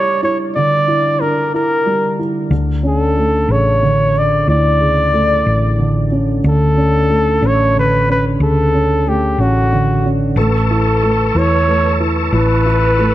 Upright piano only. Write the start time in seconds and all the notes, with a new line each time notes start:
Already playing: G3 D4 E4
0.23 E4
0.56 D3
0.88 E4
1.21 D4
1.54 E4
1.86 G3
2.19 E4
2.51 D3
2.83 C#4
3.17 A3
3.49 C#3
3.83 D3
4.48 A2
4.80 C#3
5.13 A3
5.79 D3
6.12 C#4
6.44 D3
6.77 C#4
7.10 A3
7.42 C#4
7.75 D3
8.09 C#4
8.41 C#3
8.74 C#4
9.07 A3
9.40 C#4
9.72 D3
10.05 C#4
10.39 A3
10.70 E4
11.03 A3
11.36 E4
11.68 A3
12.00 E4
12.33 E3
12.66 E4
12.99 A3